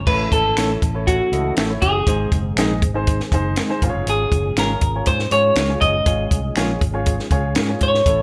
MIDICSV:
0, 0, Header, 1, 7, 480
1, 0, Start_track
1, 0, Key_signature, -5, "major"
1, 0, Tempo, 500000
1, 64, Time_signature, 4, 2, 24, 8
1, 7895, End_track
2, 0, Start_track
2, 0, Title_t, "Clean electric guitar"
2, 0, Program_c, 0, 27
2, 67, Note_on_c, 0, 71, 92
2, 289, Note_off_c, 0, 71, 0
2, 312, Note_on_c, 0, 69, 73
2, 755, Note_off_c, 0, 69, 0
2, 1028, Note_on_c, 0, 66, 106
2, 1473, Note_off_c, 0, 66, 0
2, 1744, Note_on_c, 0, 68, 96
2, 2191, Note_off_c, 0, 68, 0
2, 3931, Note_on_c, 0, 68, 80
2, 4402, Note_off_c, 0, 68, 0
2, 4406, Note_on_c, 0, 70, 77
2, 4867, Note_off_c, 0, 70, 0
2, 4871, Note_on_c, 0, 72, 92
2, 5105, Note_off_c, 0, 72, 0
2, 5109, Note_on_c, 0, 73, 91
2, 5573, Note_off_c, 0, 73, 0
2, 5577, Note_on_c, 0, 75, 93
2, 6981, Note_off_c, 0, 75, 0
2, 7517, Note_on_c, 0, 73, 88
2, 7895, Note_off_c, 0, 73, 0
2, 7895, End_track
3, 0, Start_track
3, 0, Title_t, "Grand piano"
3, 0, Program_c, 1, 0
3, 66, Note_on_c, 1, 64, 68
3, 69, Note_on_c, 1, 45, 62
3, 69, Note_on_c, 1, 69, 67
3, 74, Note_on_c, 1, 73, 71
3, 355, Note_off_c, 1, 64, 0
3, 357, Note_off_c, 1, 69, 0
3, 360, Note_off_c, 1, 73, 0
3, 543, Note_on_c, 1, 64, 65
3, 548, Note_on_c, 1, 69, 61
3, 551, Note_on_c, 1, 73, 77
3, 749, Note_off_c, 1, 45, 0
3, 761, Note_off_c, 1, 64, 0
3, 764, Note_off_c, 1, 69, 0
3, 766, Note_off_c, 1, 73, 0
3, 907, Note_on_c, 1, 64, 66
3, 910, Note_on_c, 1, 69, 61
3, 918, Note_on_c, 1, 73, 76
3, 1123, Note_off_c, 1, 64, 0
3, 1125, Note_off_c, 1, 69, 0
3, 1129, Note_off_c, 1, 73, 0
3, 1271, Note_on_c, 1, 64, 64
3, 1274, Note_on_c, 1, 69, 62
3, 1274, Note_on_c, 1, 75, 72
3, 1486, Note_off_c, 1, 64, 0
3, 1487, Note_off_c, 1, 69, 0
3, 1487, Note_off_c, 1, 75, 0
3, 1631, Note_on_c, 1, 64, 70
3, 1636, Note_on_c, 1, 69, 59
3, 1638, Note_on_c, 1, 73, 72
3, 1845, Note_off_c, 1, 64, 0
3, 1848, Note_off_c, 1, 69, 0
3, 1849, Note_off_c, 1, 73, 0
3, 1989, Note_on_c, 1, 63, 71
3, 1992, Note_on_c, 1, 44, 60
3, 1993, Note_on_c, 1, 68, 65
3, 1995, Note_on_c, 1, 72, 73
3, 2277, Note_off_c, 1, 63, 0
3, 2279, Note_off_c, 1, 68, 0
3, 2280, Note_off_c, 1, 72, 0
3, 2472, Note_on_c, 1, 63, 81
3, 2477, Note_on_c, 1, 68, 72
3, 2482, Note_on_c, 1, 75, 93
3, 2670, Note_off_c, 1, 44, 0
3, 2686, Note_off_c, 1, 63, 0
3, 2689, Note_off_c, 1, 68, 0
3, 2691, Note_off_c, 1, 75, 0
3, 2825, Note_on_c, 1, 63, 74
3, 2835, Note_on_c, 1, 68, 71
3, 2836, Note_on_c, 1, 72, 86
3, 3043, Note_off_c, 1, 63, 0
3, 3048, Note_off_c, 1, 68, 0
3, 3048, Note_off_c, 1, 72, 0
3, 3199, Note_on_c, 1, 63, 82
3, 3204, Note_on_c, 1, 68, 74
3, 3208, Note_on_c, 1, 72, 89
3, 3409, Note_off_c, 1, 63, 0
3, 3412, Note_off_c, 1, 68, 0
3, 3414, Note_off_c, 1, 72, 0
3, 3550, Note_on_c, 1, 63, 81
3, 3555, Note_on_c, 1, 68, 75
3, 3558, Note_on_c, 1, 72, 89
3, 3667, Note_off_c, 1, 63, 0
3, 3667, Note_off_c, 1, 68, 0
3, 3667, Note_off_c, 1, 72, 0
3, 3672, Note_on_c, 1, 65, 89
3, 3678, Note_on_c, 1, 44, 69
3, 3681, Note_on_c, 1, 68, 77
3, 3682, Note_on_c, 1, 72, 79
3, 3731, Note_off_c, 1, 72, 0
3, 3741, Note_on_c, 1, 73, 93
3, 4244, Note_off_c, 1, 65, 0
3, 4248, Note_off_c, 1, 68, 0
3, 4278, Note_off_c, 1, 73, 0
3, 4353, Note_off_c, 1, 44, 0
3, 4389, Note_on_c, 1, 65, 66
3, 4396, Note_on_c, 1, 68, 64
3, 4401, Note_on_c, 1, 73, 77
3, 4604, Note_off_c, 1, 65, 0
3, 4608, Note_off_c, 1, 68, 0
3, 4610, Note_off_c, 1, 73, 0
3, 4754, Note_on_c, 1, 65, 62
3, 4758, Note_on_c, 1, 68, 57
3, 4763, Note_on_c, 1, 73, 75
3, 4966, Note_off_c, 1, 65, 0
3, 4968, Note_off_c, 1, 68, 0
3, 4971, Note_off_c, 1, 73, 0
3, 5111, Note_on_c, 1, 65, 66
3, 5115, Note_on_c, 1, 68, 60
3, 5117, Note_on_c, 1, 73, 77
3, 5325, Note_off_c, 1, 65, 0
3, 5327, Note_off_c, 1, 68, 0
3, 5328, Note_off_c, 1, 73, 0
3, 5463, Note_on_c, 1, 65, 68
3, 5470, Note_on_c, 1, 68, 65
3, 5473, Note_on_c, 1, 73, 78
3, 5587, Note_on_c, 1, 44, 61
3, 5681, Note_off_c, 1, 65, 0
3, 5684, Note_off_c, 1, 68, 0
3, 5686, Note_off_c, 1, 73, 0
3, 5823, Note_on_c, 1, 65, 69
3, 5828, Note_on_c, 1, 73, 76
3, 5830, Note_on_c, 1, 68, 62
3, 6113, Note_off_c, 1, 65, 0
3, 6116, Note_off_c, 1, 73, 0
3, 6117, Note_off_c, 1, 68, 0
3, 6267, Note_off_c, 1, 44, 0
3, 6298, Note_on_c, 1, 65, 79
3, 6305, Note_on_c, 1, 68, 77
3, 6307, Note_on_c, 1, 73, 91
3, 6518, Note_off_c, 1, 65, 0
3, 6522, Note_off_c, 1, 68, 0
3, 6523, Note_off_c, 1, 73, 0
3, 6657, Note_on_c, 1, 65, 79
3, 6662, Note_on_c, 1, 68, 71
3, 6668, Note_on_c, 1, 73, 88
3, 6878, Note_off_c, 1, 65, 0
3, 6880, Note_off_c, 1, 68, 0
3, 6883, Note_off_c, 1, 73, 0
3, 7024, Note_on_c, 1, 65, 76
3, 7024, Note_on_c, 1, 68, 73
3, 7026, Note_on_c, 1, 73, 91
3, 7241, Note_off_c, 1, 65, 0
3, 7241, Note_off_c, 1, 68, 0
3, 7242, Note_off_c, 1, 73, 0
3, 7385, Note_on_c, 1, 65, 68
3, 7385, Note_on_c, 1, 68, 59
3, 7392, Note_on_c, 1, 73, 73
3, 7601, Note_off_c, 1, 65, 0
3, 7601, Note_off_c, 1, 68, 0
3, 7605, Note_off_c, 1, 73, 0
3, 7749, Note_on_c, 1, 64, 68
3, 7750, Note_on_c, 1, 45, 59
3, 7750, Note_on_c, 1, 69, 64
3, 7756, Note_on_c, 1, 73, 72
3, 7895, Note_off_c, 1, 45, 0
3, 7895, Note_off_c, 1, 64, 0
3, 7895, Note_off_c, 1, 69, 0
3, 7895, Note_off_c, 1, 73, 0
3, 7895, End_track
4, 0, Start_track
4, 0, Title_t, "Clean electric guitar"
4, 0, Program_c, 2, 27
4, 541, Note_on_c, 2, 57, 81
4, 548, Note_on_c, 2, 61, 74
4, 551, Note_on_c, 2, 64, 81
4, 557, Note_on_c, 2, 69, 78
4, 679, Note_off_c, 2, 57, 0
4, 683, Note_off_c, 2, 61, 0
4, 684, Note_off_c, 2, 64, 0
4, 687, Note_off_c, 2, 69, 0
4, 1508, Note_on_c, 2, 57, 82
4, 1511, Note_on_c, 2, 61, 80
4, 1518, Note_on_c, 2, 64, 78
4, 1519, Note_on_c, 2, 69, 84
4, 1643, Note_off_c, 2, 57, 0
4, 1644, Note_off_c, 2, 61, 0
4, 1648, Note_off_c, 2, 64, 0
4, 1648, Note_off_c, 2, 69, 0
4, 2473, Note_on_c, 2, 56, 69
4, 2479, Note_on_c, 2, 60, 70
4, 2482, Note_on_c, 2, 63, 77
4, 2484, Note_on_c, 2, 68, 86
4, 2605, Note_off_c, 2, 56, 0
4, 2608, Note_off_c, 2, 60, 0
4, 2610, Note_off_c, 2, 63, 0
4, 2611, Note_off_c, 2, 68, 0
4, 3429, Note_on_c, 2, 56, 69
4, 3433, Note_on_c, 2, 60, 77
4, 3436, Note_on_c, 2, 63, 72
4, 3443, Note_on_c, 2, 68, 72
4, 3563, Note_off_c, 2, 56, 0
4, 3565, Note_off_c, 2, 60, 0
4, 3567, Note_off_c, 2, 63, 0
4, 3570, Note_off_c, 2, 68, 0
4, 4386, Note_on_c, 2, 56, 78
4, 4388, Note_on_c, 2, 61, 83
4, 4395, Note_on_c, 2, 65, 82
4, 4399, Note_on_c, 2, 68, 85
4, 4521, Note_off_c, 2, 56, 0
4, 4523, Note_off_c, 2, 61, 0
4, 4526, Note_off_c, 2, 65, 0
4, 4528, Note_off_c, 2, 68, 0
4, 5346, Note_on_c, 2, 56, 79
4, 5349, Note_on_c, 2, 61, 78
4, 5354, Note_on_c, 2, 65, 94
4, 5355, Note_on_c, 2, 68, 91
4, 5481, Note_off_c, 2, 56, 0
4, 5483, Note_off_c, 2, 61, 0
4, 5485, Note_off_c, 2, 65, 0
4, 5486, Note_off_c, 2, 68, 0
4, 6300, Note_on_c, 2, 56, 80
4, 6307, Note_on_c, 2, 61, 82
4, 6310, Note_on_c, 2, 65, 91
4, 6313, Note_on_c, 2, 68, 89
4, 6438, Note_off_c, 2, 56, 0
4, 6441, Note_off_c, 2, 61, 0
4, 6443, Note_off_c, 2, 65, 0
4, 6444, Note_off_c, 2, 68, 0
4, 7259, Note_on_c, 2, 56, 73
4, 7263, Note_on_c, 2, 61, 73
4, 7267, Note_on_c, 2, 65, 71
4, 7270, Note_on_c, 2, 68, 76
4, 7397, Note_off_c, 2, 56, 0
4, 7399, Note_off_c, 2, 61, 0
4, 7401, Note_off_c, 2, 65, 0
4, 7403, Note_off_c, 2, 68, 0
4, 7895, End_track
5, 0, Start_track
5, 0, Title_t, "Tonewheel organ"
5, 0, Program_c, 3, 16
5, 66, Note_on_c, 3, 61, 56
5, 67, Note_on_c, 3, 57, 59
5, 71, Note_on_c, 3, 69, 69
5, 73, Note_on_c, 3, 52, 61
5, 1966, Note_off_c, 3, 61, 0
5, 1967, Note_off_c, 3, 57, 0
5, 1969, Note_off_c, 3, 69, 0
5, 1970, Note_off_c, 3, 52, 0
5, 1991, Note_on_c, 3, 51, 63
5, 1992, Note_on_c, 3, 56, 58
5, 1992, Note_on_c, 3, 68, 66
5, 1994, Note_on_c, 3, 60, 57
5, 3651, Note_off_c, 3, 51, 0
5, 3653, Note_off_c, 3, 60, 0
5, 3684, Note_on_c, 3, 53, 59
5, 3685, Note_on_c, 3, 61, 53
5, 7707, Note_off_c, 3, 56, 0
5, 7707, Note_off_c, 3, 68, 0
5, 7714, Note_off_c, 3, 53, 0
5, 7714, Note_off_c, 3, 61, 0
5, 7735, Note_on_c, 3, 69, 68
5, 7740, Note_on_c, 3, 61, 58
5, 7741, Note_on_c, 3, 57, 59
5, 7742, Note_on_c, 3, 52, 61
5, 7895, Note_off_c, 3, 52, 0
5, 7895, Note_off_c, 3, 57, 0
5, 7895, Note_off_c, 3, 61, 0
5, 7895, Note_off_c, 3, 69, 0
5, 7895, End_track
6, 0, Start_track
6, 0, Title_t, "Fingered electric bass"
6, 0, Program_c, 4, 33
6, 63, Note_on_c, 4, 33, 91
6, 243, Note_off_c, 4, 33, 0
6, 306, Note_on_c, 4, 32, 74
6, 485, Note_off_c, 4, 32, 0
6, 545, Note_on_c, 4, 33, 82
6, 725, Note_off_c, 4, 33, 0
6, 788, Note_on_c, 4, 33, 79
6, 1146, Note_off_c, 4, 33, 0
6, 1265, Note_on_c, 4, 37, 73
6, 1445, Note_off_c, 4, 37, 0
6, 1508, Note_on_c, 4, 33, 77
6, 1687, Note_off_c, 4, 33, 0
6, 1748, Note_on_c, 4, 30, 75
6, 1927, Note_off_c, 4, 30, 0
6, 1985, Note_on_c, 4, 32, 92
6, 2165, Note_off_c, 4, 32, 0
6, 2225, Note_on_c, 4, 30, 75
6, 2405, Note_off_c, 4, 30, 0
6, 2460, Note_on_c, 4, 34, 92
6, 2709, Note_on_c, 4, 32, 71
6, 2724, Note_off_c, 4, 34, 0
6, 3067, Note_off_c, 4, 32, 0
6, 3184, Note_on_c, 4, 30, 94
6, 3454, Note_off_c, 4, 30, 0
6, 3667, Note_on_c, 4, 32, 92
6, 3756, Note_off_c, 4, 32, 0
6, 3789, Note_on_c, 4, 30, 87
6, 3877, Note_off_c, 4, 30, 0
6, 3903, Note_on_c, 4, 32, 90
6, 4084, Note_off_c, 4, 32, 0
6, 4144, Note_on_c, 4, 30, 77
6, 4324, Note_off_c, 4, 30, 0
6, 4381, Note_on_c, 4, 32, 83
6, 4562, Note_off_c, 4, 32, 0
6, 4622, Note_on_c, 4, 32, 82
6, 4803, Note_off_c, 4, 32, 0
6, 4866, Note_on_c, 4, 44, 96
6, 5045, Note_off_c, 4, 44, 0
6, 5099, Note_on_c, 4, 44, 84
6, 5281, Note_off_c, 4, 44, 0
6, 5336, Note_on_c, 4, 37, 97
6, 5518, Note_off_c, 4, 37, 0
6, 5580, Note_on_c, 4, 30, 85
6, 5761, Note_off_c, 4, 30, 0
6, 5816, Note_on_c, 4, 32, 93
6, 5999, Note_off_c, 4, 32, 0
6, 6060, Note_on_c, 4, 36, 78
6, 6241, Note_off_c, 4, 36, 0
6, 6300, Note_on_c, 4, 34, 92
6, 6481, Note_off_c, 4, 34, 0
6, 6540, Note_on_c, 4, 32, 77
6, 6900, Note_off_c, 4, 32, 0
6, 7014, Note_on_c, 4, 37, 81
6, 7256, Note_on_c, 4, 44, 79
6, 7270, Note_off_c, 4, 37, 0
6, 7438, Note_off_c, 4, 44, 0
6, 7500, Note_on_c, 4, 44, 91
6, 7681, Note_off_c, 4, 44, 0
6, 7735, Note_on_c, 4, 33, 91
6, 7895, Note_off_c, 4, 33, 0
6, 7895, End_track
7, 0, Start_track
7, 0, Title_t, "Drums"
7, 65, Note_on_c, 9, 36, 111
7, 69, Note_on_c, 9, 49, 83
7, 161, Note_off_c, 9, 36, 0
7, 165, Note_off_c, 9, 49, 0
7, 305, Note_on_c, 9, 36, 89
7, 309, Note_on_c, 9, 42, 68
7, 401, Note_off_c, 9, 36, 0
7, 405, Note_off_c, 9, 42, 0
7, 546, Note_on_c, 9, 26, 90
7, 549, Note_on_c, 9, 42, 87
7, 557, Note_on_c, 9, 38, 90
7, 642, Note_off_c, 9, 26, 0
7, 645, Note_off_c, 9, 42, 0
7, 653, Note_off_c, 9, 38, 0
7, 789, Note_on_c, 9, 36, 92
7, 791, Note_on_c, 9, 42, 60
7, 885, Note_off_c, 9, 36, 0
7, 887, Note_off_c, 9, 42, 0
7, 1032, Note_on_c, 9, 36, 83
7, 1032, Note_on_c, 9, 42, 81
7, 1128, Note_off_c, 9, 36, 0
7, 1128, Note_off_c, 9, 42, 0
7, 1273, Note_on_c, 9, 42, 70
7, 1369, Note_off_c, 9, 42, 0
7, 1502, Note_on_c, 9, 42, 80
7, 1514, Note_on_c, 9, 26, 91
7, 1515, Note_on_c, 9, 38, 111
7, 1598, Note_off_c, 9, 42, 0
7, 1610, Note_off_c, 9, 26, 0
7, 1611, Note_off_c, 9, 38, 0
7, 1746, Note_on_c, 9, 42, 67
7, 1749, Note_on_c, 9, 36, 85
7, 1842, Note_off_c, 9, 42, 0
7, 1845, Note_off_c, 9, 36, 0
7, 1985, Note_on_c, 9, 36, 104
7, 1989, Note_on_c, 9, 42, 86
7, 2081, Note_off_c, 9, 36, 0
7, 2085, Note_off_c, 9, 42, 0
7, 2226, Note_on_c, 9, 36, 90
7, 2228, Note_on_c, 9, 42, 72
7, 2322, Note_off_c, 9, 36, 0
7, 2324, Note_off_c, 9, 42, 0
7, 2467, Note_on_c, 9, 26, 93
7, 2473, Note_on_c, 9, 42, 91
7, 2481, Note_on_c, 9, 38, 91
7, 2563, Note_off_c, 9, 26, 0
7, 2569, Note_off_c, 9, 42, 0
7, 2577, Note_off_c, 9, 38, 0
7, 2709, Note_on_c, 9, 36, 92
7, 2710, Note_on_c, 9, 42, 64
7, 2805, Note_off_c, 9, 36, 0
7, 2806, Note_off_c, 9, 42, 0
7, 2946, Note_on_c, 9, 42, 79
7, 2951, Note_on_c, 9, 36, 85
7, 3042, Note_off_c, 9, 42, 0
7, 3047, Note_off_c, 9, 36, 0
7, 3072, Note_on_c, 9, 38, 34
7, 3168, Note_off_c, 9, 38, 0
7, 3186, Note_on_c, 9, 36, 89
7, 3190, Note_on_c, 9, 42, 75
7, 3282, Note_off_c, 9, 36, 0
7, 3286, Note_off_c, 9, 42, 0
7, 3418, Note_on_c, 9, 42, 73
7, 3431, Note_on_c, 9, 38, 114
7, 3432, Note_on_c, 9, 26, 90
7, 3514, Note_off_c, 9, 42, 0
7, 3527, Note_off_c, 9, 38, 0
7, 3528, Note_off_c, 9, 26, 0
7, 3668, Note_on_c, 9, 36, 97
7, 3669, Note_on_c, 9, 42, 64
7, 3764, Note_off_c, 9, 36, 0
7, 3765, Note_off_c, 9, 42, 0
7, 3906, Note_on_c, 9, 42, 86
7, 4002, Note_off_c, 9, 42, 0
7, 4144, Note_on_c, 9, 36, 88
7, 4148, Note_on_c, 9, 42, 67
7, 4240, Note_off_c, 9, 36, 0
7, 4244, Note_off_c, 9, 42, 0
7, 4385, Note_on_c, 9, 26, 93
7, 4386, Note_on_c, 9, 42, 92
7, 4394, Note_on_c, 9, 38, 86
7, 4481, Note_off_c, 9, 26, 0
7, 4482, Note_off_c, 9, 42, 0
7, 4490, Note_off_c, 9, 38, 0
7, 4618, Note_on_c, 9, 42, 64
7, 4624, Note_on_c, 9, 36, 92
7, 4714, Note_off_c, 9, 42, 0
7, 4720, Note_off_c, 9, 36, 0
7, 4855, Note_on_c, 9, 42, 86
7, 4866, Note_on_c, 9, 36, 86
7, 4951, Note_off_c, 9, 42, 0
7, 4962, Note_off_c, 9, 36, 0
7, 4983, Note_on_c, 9, 38, 35
7, 5079, Note_off_c, 9, 38, 0
7, 5098, Note_on_c, 9, 42, 71
7, 5194, Note_off_c, 9, 42, 0
7, 5332, Note_on_c, 9, 42, 78
7, 5342, Note_on_c, 9, 26, 92
7, 5345, Note_on_c, 9, 38, 108
7, 5428, Note_off_c, 9, 42, 0
7, 5438, Note_off_c, 9, 26, 0
7, 5441, Note_off_c, 9, 38, 0
7, 5581, Note_on_c, 9, 42, 67
7, 5583, Note_on_c, 9, 36, 76
7, 5677, Note_off_c, 9, 42, 0
7, 5679, Note_off_c, 9, 36, 0
7, 5817, Note_on_c, 9, 42, 81
7, 5819, Note_on_c, 9, 36, 106
7, 5913, Note_off_c, 9, 42, 0
7, 5915, Note_off_c, 9, 36, 0
7, 6059, Note_on_c, 9, 36, 88
7, 6063, Note_on_c, 9, 42, 68
7, 6155, Note_off_c, 9, 36, 0
7, 6159, Note_off_c, 9, 42, 0
7, 6294, Note_on_c, 9, 26, 91
7, 6304, Note_on_c, 9, 42, 88
7, 6312, Note_on_c, 9, 38, 89
7, 6390, Note_off_c, 9, 26, 0
7, 6400, Note_off_c, 9, 42, 0
7, 6408, Note_off_c, 9, 38, 0
7, 6541, Note_on_c, 9, 36, 93
7, 6541, Note_on_c, 9, 42, 62
7, 6637, Note_off_c, 9, 36, 0
7, 6637, Note_off_c, 9, 42, 0
7, 6776, Note_on_c, 9, 42, 82
7, 6784, Note_on_c, 9, 36, 88
7, 6872, Note_off_c, 9, 42, 0
7, 6880, Note_off_c, 9, 36, 0
7, 6905, Note_on_c, 9, 38, 35
7, 7001, Note_off_c, 9, 38, 0
7, 7015, Note_on_c, 9, 36, 88
7, 7015, Note_on_c, 9, 42, 70
7, 7111, Note_off_c, 9, 36, 0
7, 7111, Note_off_c, 9, 42, 0
7, 7247, Note_on_c, 9, 42, 79
7, 7257, Note_on_c, 9, 26, 91
7, 7260, Note_on_c, 9, 38, 113
7, 7343, Note_off_c, 9, 42, 0
7, 7353, Note_off_c, 9, 26, 0
7, 7356, Note_off_c, 9, 38, 0
7, 7493, Note_on_c, 9, 42, 65
7, 7500, Note_on_c, 9, 36, 82
7, 7589, Note_off_c, 9, 42, 0
7, 7596, Note_off_c, 9, 36, 0
7, 7627, Note_on_c, 9, 38, 33
7, 7723, Note_off_c, 9, 38, 0
7, 7737, Note_on_c, 9, 36, 108
7, 7738, Note_on_c, 9, 42, 86
7, 7833, Note_off_c, 9, 36, 0
7, 7834, Note_off_c, 9, 42, 0
7, 7895, End_track
0, 0, End_of_file